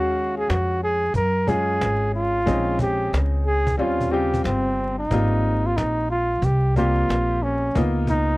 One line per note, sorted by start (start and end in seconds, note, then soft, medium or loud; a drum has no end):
0.00 0.46 D#2 medium
0.00 1.01 G#3 medium
0.00 1.01 C#4 medium
0.00 0.34 F#4 medium
0.00 1.02 F#4 medium
0.00 1.02 F5 medium
0.15 cajon slap soft
0.38 0.51 G#4 medium
0.38 cajon slap soft
0.49 1.12 F2 medium
0.49 0.83 F#4 medium
0.49 cajon slap loud
0.82 1.14 G#4 medium
0.82 cajon slap soft
1.14 1.77 F#2 medium
1.14 1.50 A#4 medium
1.14 cajon bass medium
1.14 cajon slap soft
1.47 2.37 G#3 medium
1.47 2.37 C#4 medium
1.47 2.38 F4 medium
1.47 2.14 G#4 loud
1.47 2.38 G#4 medium
1.47 cajon bass medium
1.81 2.44 G#1 medium
1.81 cajon slap loud
2.15 2.77 F4 medium
2.15 cajon slap soft
2.46 3.10 A#1 loud
2.46 3.65 G#3 medium
2.46 3.65 C4 medium
2.46 3.65 C#4 medium
2.46 3.66 D#4 medium
2.46 cajon bass medium
2.79 3.18 G4 medium
2.79 cajon bass medium
3.01 cajon slap soft
3.13 3.76 C#2 medium
3.13 cajon slap loud
3.46 3.77 G#4 medium
3.46 cajon slap soft
3.67 cajon bass medium
3.77 4.42 D#2 medium
3.77 4.08 G3 medium
3.77 4.09 C4 medium
3.77 4.09 C#4 medium
3.77 4.13 F4 medium
3.77 4.10 F4 medium
4.00 cajon bass medium
4.11 5.02 C#3 medium
4.11 5.01 G3 medium
4.11 5.01 C4 medium
4.11 5.02 F4 medium
4.11 4.44 G4 medium
4.34 cajon bass medium
4.44 5.07 G1 medium
4.44 4.95 C4 medium
4.44 cajon slap loud
4.78 cajon slap soft
4.99 5.68 D#4 medium
5.11 5.74 G#1 medium
5.11 6.29 G3 medium
5.11 6.30 A#3 medium
5.11 6.30 C4 medium
5.11 6.30 F4 medium
5.11 cajon bass loud
5.43 cajon slap soft
5.65 5.78 F4 medium
5.65 cajon slap soft
5.77 6.40 A#1 medium
5.77 6.10 D#4 medium
5.77 cajon slap loud
6.10 6.46 F4 medium
6.10 cajon slap soft
6.32 cajon slap soft
6.42 7.05 C2 medium
6.42 6.77 G4 medium
6.42 cajon bass medium
6.42 cajon slap soft
6.76 7.65 G3 medium
6.76 7.65 A#3 medium
6.76 7.66 C4 medium
6.76 7.44 F4 loud
6.76 7.66 G4 medium
6.76 cajon bass medium
7.09 7.72 A#1 medium
7.09 cajon slap loud
7.43 7.83 C#4 medium
7.43 cajon slap soft
7.75 8.37 C#2 medium
7.75 8.37 A#3 medium
7.75 8.37 B3 medium
7.75 8.37 D#4 medium
7.75 8.37 F4 medium
7.75 cajon bass medium
8.07 8.37 D#4 medium
8.07 cajon bass medium
8.30 cajon slap soft